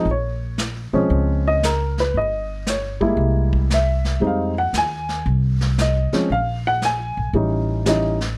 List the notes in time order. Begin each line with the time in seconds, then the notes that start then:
0.05 A#1, brush sweep
0.11 C#5
0.58 snare, hi-hat pedal
0.93 B1 F3 G#3 C4 C#4
1.10 C#2, brush sweep
1.48 D#5
1.63 A#4, snare, hi-hat pedal
1.98 B4, snare
2.14 G1 D#5, brush sweep
2.67 C#5, snare, hi-hat pedal
3.01 G3 G#3 A#3 E4, kick
3.17 C2, brush sweep
3.53 kick
3.70 E5, snare, hi-hat pedal
4.05 snare
4.20 F2 G3 G#3 C4 D#4, brush sweep
4.27 F5
4.58 F#5
4.73 D#2, snare, hi-hat pedal
4.78 G#5
5.09 snare
5.26 C2, brush sweep
5.61 snare
5.78 D#5, snare, hi-hat pedal
6.13 F3 G#3 C4 C#4, snare
6.30 A#1 F5, brush sweep
6.67 F#5
6.82 G#5, snare, hi-hat pedal
7.17 A#1
7.33 A1 E3 G3 C#4 D#4, brush sweep
7.86 E3 G3 C#4 D#4 D#5, snare, hi-hat pedal
8.21 snare